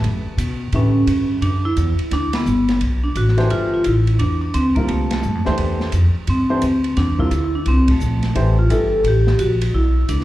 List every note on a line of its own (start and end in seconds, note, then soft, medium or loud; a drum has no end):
0.00 0.31 E3 medium
0.00 0.31 A3 medium
0.00 0.31 D4 medium
0.00 0.31 G4 medium
0.00 0.32 B4 medium
0.00 ride medium
0.04 0.25 F#2 medium
0.26 muted upright bass stroke soft
0.37 0.72 B2 medium
0.37 hi-hat pedal medium
0.37 ride medium
0.72 1.07 A2 medium
0.72 1.70 D3 soft
0.72 1.70 E3 medium
0.72 1.70 A3 soft
0.72 1.28 C#4 medium
0.72 1.70 G4 medium
0.72 1.71 B4 medium
0.72 ride medium
1.07 1.41 G2 medium
1.07 hi-hat pedal medium
1.07 ride medium
1.41 1.76 F#2 medium
1.41 1.65 D4 medium
1.41 ride medium
1.65 1.87 E4 medium
1.77 1.98 E2 medium
1.77 hi-hat pedal medium
1.77 ride medium
1.90 2.13 E4 medium
1.99 muted upright bass stroke soft
1.99 ride soft
2.11 2.45 D2 medium
2.11 2.33 D4 loud
2.11 snare soft
2.11 ride medium
2.33 2.78 B3 medium
2.33 snare medium
2.33 ride medium
2.46 2.80 G1 medium
2.46 hi-hat pedal medium
2.68 snare soft
2.68 ride soft
2.81 3.15 B1 medium
2.81 ride medium
3.04 3.15 D4 medium
3.15 3.49 A1 medium
3.15 3.49 F#4 medium
3.15 hi-hat pedal soft
3.15 ride medium
3.28 snare soft
3.37 3.82 E3 medium
3.37 3.82 A3 medium
3.37 3.82 D4 medium
3.37 3.82 G4 medium
3.37 3.82 C5 medium
3.37 snare soft
3.37 ride soft
3.50 3.72 F4 loud
3.50 ride medium
3.74 3.86 F4 medium
3.84 4.19 A1 medium
3.84 4.21 E4 medium
3.84 hi-hat pedal medium
3.84 ride medium
4.07 ride soft
4.19 4.53 E2 medium
4.19 4.40 D4 medium
4.19 ride medium
4.41 4.54 D4 medium
4.54 4.75 D2 medium
4.54 4.64 C4 medium
4.54 hi-hat pedal soft
4.54 ride medium
4.75 5.21 D3 medium
4.75 5.21 G3 medium
4.75 4.87 A#3 medium
4.75 5.21 C4 medium
4.75 5.21 F4 medium
4.75 5.21 A#4 medium
4.75 muted upright bass stroke soft
4.75 kick medium
4.75 ride soft
4.88 5.22 C2 medium
4.88 5.10 A3 medium
4.88 ride medium
5.11 5.55 A3 medium
5.11 snare medium
5.11 ride medium
5.22 5.35 G2 medium
5.22 hi-hat pedal medium
5.35 5.46 F2 medium
5.45 5.57 D2 medium
5.45 5.90 E3 medium
5.45 5.90 A3 medium
5.45 5.91 D4 medium
5.45 5.90 G4 medium
5.45 5.91 C5 medium
5.45 snare soft
5.58 5.92 E2 medium
5.58 ride medium
5.80 snare soft
5.92 6.13 F2 medium
5.92 hi-hat pedal medium
5.92 ride medium
6.15 muted upright bass stroke soft
6.27 6.61 G2 medium
6.27 7.00 C4 medium
6.27 ride medium
6.50 6.61 E3 medium
6.50 6.61 A3 medium
6.50 6.61 D4 medium
6.50 6.61 G4 medium
6.50 6.61 C5 medium
6.62 6.96 D2 medium
6.62 hi-hat pedal medium
6.62 ride medium
6.84 ride soft
6.97 7.30 E2 medium
6.97 7.18 D4 medium
6.97 snare soft
6.97 ride medium
7.18 7.30 D3 medium
7.18 7.30 G3 medium
7.18 7.30 C4 medium
7.18 7.42 E4 medium
7.18 7.30 F4 medium
7.18 7.30 A#4 medium
7.18 kick medium
7.31 7.65 D2 medium
7.31 hi-hat pedal medium
7.31 ride medium
7.44 7.54 E4 medium
7.55 7.66 D4 medium
7.66 8.00 C2 medium
7.66 7.88 C4 medium
7.66 ride medium
7.88 8.55 A3 medium
7.88 kick medium
7.88 ride medium
8.00 8.34 A#1 medium
8.00 hi-hat pedal medium
8.23 snare soft
8.23 ride soft
8.35 8.69 A1 medium
8.35 8.55 E3 medium
8.35 8.55 A3 medium
8.35 8.55 D4 medium
8.35 8.56 G4 medium
8.35 8.56 C5 medium
8.35 ride medium
8.59 8.71 F4 medium
8.69 9.03 G1 medium
8.69 9.05 E3 medium
8.69 9.05 A3 soft
8.69 9.05 D4 soft
8.69 9.05 G4 medium
8.69 9.06 A4 loud
8.69 9.05 A4 medium
8.69 hi-hat pedal soft
8.69 ride medium
9.03 9.38 A1 medium
9.03 ride medium
9.08 9.42 G4 loud
9.27 snare medium
9.39 9.73 A#1 medium
9.39 9.75 F#4 medium
9.39 hi-hat pedal medium
9.39 ride medium
9.61 ride medium
9.74 10.08 B1 medium
9.74 10.10 E4 loud
10.09 10.24 C#2 medium
10.09 10.24 D4 medium
10.09 hi-hat pedal medium
10.09 ride medium
10.20 snare soft